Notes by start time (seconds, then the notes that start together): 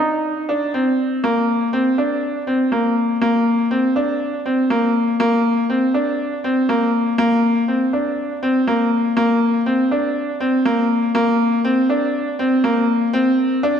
0.00 D#4
0.49 D4
0.74 C4
1.24 A#3
1.73 C4
1.98 D4
2.47 C4
2.72 A#3
3.21 A#3
3.71 C4
3.96 D4
4.46 C4
4.70 A#3
5.20 A#3
5.70 C4
5.94 D4
6.44 C4
6.69 A#3
7.18 A#3
7.68 C4
7.93 D4
8.43 C4
8.67 A#3
9.17 A#3
9.66 C4
9.91 D4
10.40 C4
10.65 A#3
11.15 A#3
11.65 C4
11.90 D4
12.39 C4
12.64 A#3
13.13 C4
13.63 D4